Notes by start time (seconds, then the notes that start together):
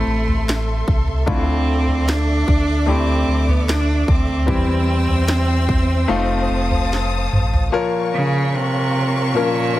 Already playing: A2 C3 A3 C4 E4 A4 E5 C6
0.07 A1
0.28 floor tom
0.49 snare
0.88 C2, kick
1.08 floor tom
1.26 D2 D3 A3 C4 D4 E4 F4 D5 D6, kick, floor tom
1.88 floor tom
2.09 D4, snare
2.48 D2, kick, floor tom
2.86 A3 C4 D4 E4 G4, floor tom
3.28 D2
3.48 B3, floor tom
3.69 D4, snare
4.08 D2 C4, kick
4.28 floor tom
4.46 E2 E3 G3 C4 E4 G4 C5 G5 E6, kick, floor tom
5.08 floor tom
5.28 snare
5.68 kick, floor tom
6.08 F1 A3 C4 D#4 F4 F5 A5 D#6
6.50 F1
6.71 floor tom
6.93 snare
7.33 A1, mid tom
7.54 floor tom
7.72 A#2 F3 A#3 F4 A#4 C#5 F5 C#6
8.14 C#3
8.54 C3
9.33 A#2 F3 A#3 C#4 F4 A#4
9.76 F3 A#3 C#4